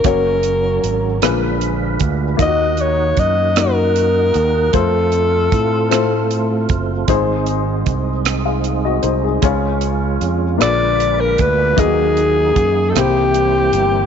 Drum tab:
HH |xxxxxx|xxxxxx|xxxxxx|xxxxxx|
SD |---r--|---r--|---r--|---r--|
BD |o----o|o-o---|o-o--o|o-o---|

HH |xxxxxx|xxxxxx|
SD |---r--|---r--|
BD |o----o|o-o---|